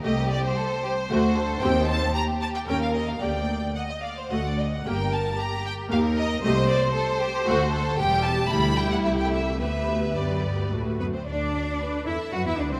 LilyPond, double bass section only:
\new Staff \with { instrumentName = "Double bass section" } { \clef bass \time 3/4 \key g \minor \tempo 4 = 113 c,4 r4 d,4 | ees,4 r4 ees,4 | d,4 r4 d,4 | g,,4 r4 ees,4 |
c,4 r4 d,4 | \key c \lydian e,,4 d,4 c,4 | d,2 d,8 r8 | d,4. e,8 fis,16 e,16 d,16 c,16 | }